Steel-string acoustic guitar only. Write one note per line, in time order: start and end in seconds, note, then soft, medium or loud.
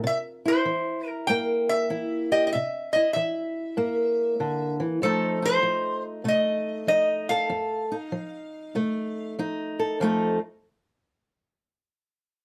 0.04 0.62 C3 medium
0.45 1.89 E4 medium
0.65 1.24 E3 medium
1.29 1.86 G2 medium
1.29 2.51 A#3 medium
1.90 2.48 E3 medium
1.90 2.50 E4 medium
2.32 2.50 G4 medium
2.55 3.12 C3 medium
2.96 5.00 E4 medium
3.16 3.73 E3 medium
3.77 4.35 G2 medium
3.77 4.99 A#3 medium
4.40 4.80 D3 medium
4.80 5.01 E3 medium
5.02 5.60 F2 medium
5.02 5.62 F3 medium
5.02 6.25 A3 medium
5.02 5.42 D#4 medium
5.42 6.88 D#4 medium
5.63 6.21 F3 medium
6.24 6.83 C3 medium
6.24 7.95 A3 medium
6.87 7.46 F3 medium
6.87 7.53 D#4 medium
7.30 7.95 A4 medium
7.50 8.08 F2 medium
7.92 9.38 D#4 medium
8.12 8.71 F3 medium
8.75 9.33 C3 medium
8.75 9.98 A3 medium
9.39 9.96 F3 medium
9.39 9.99 D#4 medium
9.79 9.98 A4 medium
10.00 10.37 F2 medium
10.00 10.38 F3 medium
10.00 10.38 A3 medium
10.00 10.39 D#4 medium
10.00 10.39 A4 medium